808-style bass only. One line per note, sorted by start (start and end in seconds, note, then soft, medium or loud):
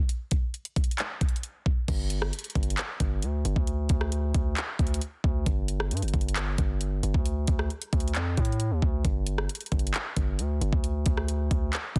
1.88 2.31 G1 loud
2.55 2.77 G1 loud
3.00 3.24 G1 loud
3.23 3.44 D2 loud
3.45 3.56 G1 loud
3.56 3.88 D2 loud
3.90 4.33 D2 loud
4.35 4.56 D2 loud
4.79 5.01 D2 loud
5.24 5.46 D2 loud
5.46 5.93 G1 loud
5.91 6.04 G2 loud
6.02 6.13 G1 loud
6.14 6.57 G1 loud
6.58 7.01 G1 loud
7.03 7.14 G1 loud
7.14 7.47 D2 loud
7.48 7.69 D2 loud
7.93 8.17 D2 loud
8.15 8.36 F2 loud
8.38 8.73 A2 loud
8.71 8.82 D#2 loud
8.82 9.04 D2 loud
9.05 9.48 G1 loud
9.72 9.93 G1 loud
10.17 10.40 G1 loud
10.39 10.60 D2 loud
10.61 10.72 G1 loud
10.73 11.05 D2 loud
11.06 11.49 D2 loud
11.51 11.72 D2 loud
11.96 11.99 D2 loud